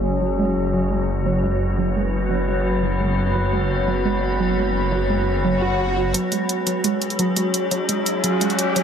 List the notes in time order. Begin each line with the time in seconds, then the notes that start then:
Already playing: F#1 F#3 C#4 F#4 G#4 C#5
0.21 F#3
0.39 G#3
0.56 F#1 B3 B4
0.74 F#3
0.91 G#3
1.26 F#3
1.43 G#3
1.78 F#3
1.96 G#3
2.02 B5
2.31 F#3
2.48 G#3
2.83 F#3
3.00 G#3
3.35 F#3
3.53 G#3
3.88 F#3
4.05 G#3
4.40 F#3
4.57 G#3
4.92 F#3
5.10 G#3
5.45 F#3, swell
5.62 F#4
5.97 F#4
6.14 F#3 C#4 G#4, closed hi-hat, riser
6.32 G#3, closed hi-hat
6.49 closed hi-hat
6.67 F#3, closed hi-hat
6.84 G#3, closed hi-hat
7.02 closed hi-hat
7.10 closed hi-hat
7.19 F#3, closed hi-hat
7.36 G#3, closed hi-hat
7.54 closed hi-hat
7.71 F#3, closed hi-hat
7.89 G#3, closed hi-hat
8.06 closed hi-hat
8.24 F#3, closed hi-hat
8.41 G#3, closed hi-hat
8.50 closed hi-hat
8.59 closed hi-hat
8.76 F#3, closed hi-hat